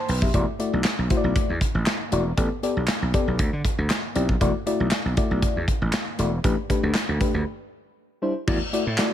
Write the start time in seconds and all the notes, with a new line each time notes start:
Already playing: C6
0.09 B1 B4 G5, open hi-hat
0.22 G4 E5, kick
0.34 E1 A3 E4 F#4 D5, kick, closed hi-hat
0.59 A3 E4 F#4 D5, closed hi-hat
0.73 B1
0.84 snare, clap, closed hi-hat
0.99 B1
1.10 A3 E4 F#4 C5, kick, closed hi-hat
1.17 D5
1.24 B1
1.36 kick, closed hi-hat
1.49 E2
1.61 kick, closed hi-hat
1.75 A1
1.86 snare, clap, closed hi-hat
2.12 E1 A3 E4 F#4 D5, closed hi-hat
2.37 A1 B3 G4 A4 D5, kick, closed hi-hat
2.63 B3 G4 A4 D5, closed hi-hat
2.77 B1
2.88 snare, clap, closed hi-hat
3.02 B1
3.14 B3 G4 A4 D5, kick, closed hi-hat
3.28 B1
3.39 D2, kick, closed hi-hat
3.53 D3
3.65 kick, closed hi-hat
3.78 D2
3.90 snare, clap, closed hi-hat
4.15 B1 C4 E4 G4 D5, closed hi-hat
4.29 kick
4.41 E1 A3 E4 F#4 D5, kick, closed hi-hat
4.66 A3 E4 F#4 D5, closed hi-hat
4.80 B1
4.91 snare, clap, closed hi-hat
5.05 B1
5.17 A3 E4 F#4 D5, kick, closed hi-hat
5.31 B1
5.42 muted slap bass stroke, kick, closed hi-hat
5.56 E2
5.68 kick, closed hi-hat
5.82 A1
5.93 snare, clap, closed hi-hat
6.18 E1 A3 E4 F#4 D5, closed hi-hat
6.44 A1 A3 D4 G4 B4, kick, closed hi-hat
6.69 A3 D4 G4 B4, kick, closed hi-hat
6.83 D2
6.95 snare, clap, closed hi-hat
7.09 D2
7.20 A3 D4 G4 B4, kick, closed hi-hat
7.34 D2
8.22 G3 D4 E4 C5
8.47 E2 A3 E4 F#4 D5, kick, crash
8.73 A3 E4 F#4 D5, closed hi-hat
8.87 A2
8.98 A3 E4 F#4 D5, snare, clap, closed hi-hat